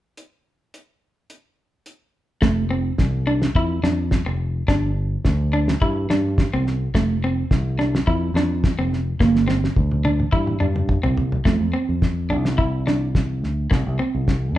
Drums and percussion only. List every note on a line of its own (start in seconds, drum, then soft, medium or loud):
0.17 closed hi-hat soft
0.74 closed hi-hat soft
1.30 closed hi-hat soft
1.86 closed hi-hat soft
2.42 kick loud
2.42 snare medium
2.98 kick medium
2.98 snare medium
3.42 snare medium
3.55 kick medium
3.83 snare medium
4.11 kick medium
4.11 snare medium
4.68 kick medium
4.68 snare medium
5.25 kick medium
5.25 snare medium
5.68 snare medium
5.82 kick medium
6.10 snare medium
6.38 kick loud
6.38 snare medium
6.67 snare soft
6.95 kick medium
6.95 snare medium
7.51 kick medium
7.51 snare medium
7.80 snare soft
7.95 snare medium
8.07 kick medium
8.36 snare medium
8.64 kick loud
8.64 snare medium
8.93 snare soft
9.20 kick medium
9.20 snare medium
9.36 snare soft
9.49 snare medium
9.64 snare soft
9.76 kick medium
9.76 high tom medium
9.91 high tom medium
10.05 high tom medium
10.20 mid tom medium
10.33 kick medium
10.33 mid tom medium
10.47 mid tom medium
10.61 mid tom medium
10.76 mid tom medium
10.89 kick medium
10.89 mid tom medium
11.04 floor tom medium
11.18 floor tom medium
11.32 floor tom medium
11.46 kick medium
11.46 snare medium
12.02 kick medium
12.02 snare medium
12.45 snare medium
12.59 kick medium
12.87 snare medium
13.15 kick medium
13.15 snare medium
13.44 snare soft
13.71 kick medium
13.71 snare medium
14.28 kick medium
14.28 snare medium